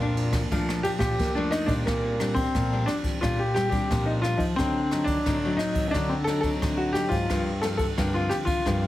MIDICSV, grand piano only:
0, 0, Header, 1, 2, 480
1, 0, Start_track
1, 0, Key_signature, -2, "major"
1, 0, Tempo, 678733
1, 1322, Time_signature, 4, 2, 24, 8
1, 6273, End_track
2, 0, Start_track
2, 0, Title_t, "Grand piano"
2, 0, Program_c, 0, 0
2, 589, Note_on_c, 0, 67, 100
2, 624, Note_off_c, 0, 67, 0
2, 700, Note_on_c, 0, 67, 93
2, 934, Note_off_c, 0, 67, 0
2, 956, Note_on_c, 0, 62, 85
2, 1066, Note_on_c, 0, 63, 98
2, 1083, Note_off_c, 0, 62, 0
2, 1176, Note_on_c, 0, 62, 92
2, 1198, Note_off_c, 0, 63, 0
2, 1211, Note_off_c, 0, 62, 0
2, 1313, Note_on_c, 0, 58, 88
2, 1658, Note_on_c, 0, 60, 96
2, 1689, Note_off_c, 0, 58, 0
2, 2023, Note_on_c, 0, 62, 91
2, 2041, Note_off_c, 0, 60, 0
2, 2079, Note_off_c, 0, 62, 0
2, 2271, Note_on_c, 0, 65, 93
2, 2399, Note_on_c, 0, 67, 82
2, 2400, Note_off_c, 0, 65, 0
2, 2495, Note_off_c, 0, 67, 0
2, 2506, Note_on_c, 0, 67, 97
2, 2602, Note_off_c, 0, 67, 0
2, 2613, Note_on_c, 0, 67, 94
2, 2850, Note_off_c, 0, 67, 0
2, 2871, Note_on_c, 0, 63, 87
2, 2906, Note_off_c, 0, 63, 0
2, 2983, Note_on_c, 0, 65, 99
2, 3093, Note_on_c, 0, 63, 86
2, 3103, Note_off_c, 0, 65, 0
2, 3129, Note_off_c, 0, 63, 0
2, 3226, Note_on_c, 0, 60, 103
2, 3567, Note_on_c, 0, 62, 101
2, 3568, Note_off_c, 0, 60, 0
2, 3918, Note_off_c, 0, 62, 0
2, 3937, Note_on_c, 0, 63, 97
2, 4144, Note_off_c, 0, 63, 0
2, 4157, Note_on_c, 0, 63, 69
2, 4180, Note_on_c, 0, 62, 99
2, 4194, Note_off_c, 0, 63, 0
2, 4306, Note_on_c, 0, 60, 80
2, 4315, Note_off_c, 0, 62, 0
2, 4342, Note_off_c, 0, 60, 0
2, 4415, Note_on_c, 0, 69, 108
2, 4520, Note_off_c, 0, 69, 0
2, 4530, Note_on_c, 0, 69, 99
2, 4588, Note_off_c, 0, 69, 0
2, 4790, Note_on_c, 0, 66, 88
2, 4899, Note_on_c, 0, 67, 100
2, 4907, Note_off_c, 0, 66, 0
2, 5010, Note_on_c, 0, 65, 95
2, 5034, Note_off_c, 0, 67, 0
2, 5248, Note_off_c, 0, 65, 0
2, 5385, Note_on_c, 0, 69, 93
2, 5420, Note_off_c, 0, 69, 0
2, 5497, Note_on_c, 0, 69, 90
2, 5554, Note_off_c, 0, 69, 0
2, 5758, Note_on_c, 0, 65, 85
2, 5866, Note_on_c, 0, 67, 97
2, 5883, Note_off_c, 0, 65, 0
2, 5901, Note_off_c, 0, 67, 0
2, 5976, Note_on_c, 0, 65, 92
2, 6212, Note_off_c, 0, 65, 0
2, 6273, End_track
0, 0, End_of_file